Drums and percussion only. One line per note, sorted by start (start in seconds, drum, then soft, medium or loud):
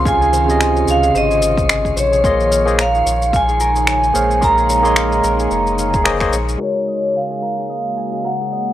0.05 kick loud
0.05 shaker soft
0.22 shaker soft
0.33 shaker medium
0.50 shaker soft
0.61 finger snap loud
0.61 shaker soft
0.77 shaker soft
0.88 shaker medium
1.03 shaker soft
1.15 shaker soft
1.31 shaker soft
1.42 shaker medium
1.58 kick loud
1.58 shaker soft
1.69 finger snap loud
1.69 shaker soft
1.85 kick medium
1.85 shaker soft
1.97 shaker medium
2.13 shaker soft
2.24 kick loud
2.24 shaker soft
2.40 shaker soft
2.52 shaker medium
2.68 shaker soft
2.79 finger snap loud
2.79 shaker soft
2.95 shaker soft
3.07 shaker medium
3.22 shaker soft
3.33 kick loud
3.33 shaker soft
3.49 shaker soft
3.60 shaker medium
3.76 shaker soft
3.87 finger snap loud
3.87 shaker soft
4.04 shaker soft
4.15 shaker medium
4.31 shaker soft
4.42 kick loud
4.42 shaker soft
4.58 shaker soft
4.70 shaker medium
4.85 shaker soft
4.96 finger snap loud
4.96 shaker soft
5.12 shaker soft
5.24 shaker medium
5.40 shaker soft
5.51 shaker soft
5.67 shaker soft
5.79 shaker medium
5.94 kick loud
5.94 shaker soft
6.05 finger snap loud
6.05 shaker soft
6.20 finger snap soft
6.20 kick medium
6.20 shaker soft
6.33 shaker medium
6.49 shaker soft
7.43 shaker medium
7.70 shaker soft
7.97 shaker medium
8.52 shaker medium
8.68 shaker soft